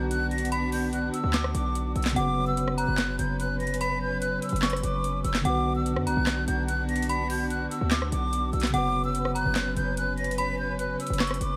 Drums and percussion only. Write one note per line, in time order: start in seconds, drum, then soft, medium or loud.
0.11 closed hi-hat medium
0.31 closed hi-hat soft
0.38 closed hi-hat medium
0.45 closed hi-hat medium
0.52 closed hi-hat medium
0.72 open hi-hat medium
0.93 closed hi-hat medium
1.14 closed hi-hat medium
1.34 snare loud
1.34 clap loud
1.34 closed hi-hat medium
1.44 cross-stick loud
1.55 closed hi-hat medium
1.75 closed hi-hat medium
1.96 closed hi-hat soft
2.02 snare loud
2.02 clap medium
2.02 closed hi-hat medium
2.09 closed hi-hat medium
2.16 closed hi-hat medium
2.57 closed hi-hat medium
2.68 cross-stick medium
2.78 closed hi-hat medium
2.98 cross-stick medium
2.98 snare loud
2.98 clap loud
2.98 closed hi-hat medium
3.19 closed hi-hat medium
3.40 closed hi-hat medium
3.60 closed hi-hat soft
3.67 closed hi-hat medium
3.74 closed hi-hat medium
3.81 closed hi-hat medium
4.22 closed hi-hat medium
4.42 closed hi-hat medium
4.49 closed hi-hat medium
4.56 closed hi-hat medium
4.62 snare loud
4.62 clap loud
4.62 closed hi-hat medium
4.70 cross-stick loud
4.70 closed hi-hat medium
4.77 closed hi-hat medium
4.83 closed hi-hat medium
5.04 closed hi-hat medium
5.24 closed hi-hat medium
5.34 snare loud
5.34 clap medium
5.45 closed hi-hat medium
5.86 closed hi-hat medium
5.96 cross-stick medium
6.07 closed hi-hat medium
6.27 cross-stick medium
6.27 snare loud
6.27 clap loud
6.27 closed hi-hat medium
6.48 closed hi-hat medium
6.68 closed hi-hat medium
6.89 closed hi-hat soft
6.96 closed hi-hat medium
7.02 closed hi-hat medium
7.09 closed hi-hat medium
7.30 open hi-hat medium
7.50 closed hi-hat medium
7.71 closed hi-hat medium
7.91 snare loud
7.91 clap loud
7.91 closed hi-hat medium
8.02 cross-stick loud
8.12 closed hi-hat medium
8.33 closed hi-hat medium
8.53 closed hi-hat soft
8.60 snare loud
8.60 clap medium
8.60 closed hi-hat medium
8.67 closed hi-hat medium
8.74 closed hi-hat medium
9.15 closed hi-hat medium
9.25 cross-stick medium
9.36 closed hi-hat medium
9.55 cross-stick medium
9.55 snare loud
9.55 clap loud
9.55 closed hi-hat medium
9.77 closed hi-hat medium
9.97 closed hi-hat medium
10.18 closed hi-hat soft
10.24 closed hi-hat medium
10.31 closed hi-hat medium
10.38 closed hi-hat medium
10.79 closed hi-hat medium
11.00 closed hi-hat medium
11.07 closed hi-hat medium
11.13 closed hi-hat medium
11.20 snare loud
11.20 clap loud
11.20 closed hi-hat medium
11.27 cross-stick loud
11.27 closed hi-hat medium
11.34 closed hi-hat medium
11.41 closed hi-hat medium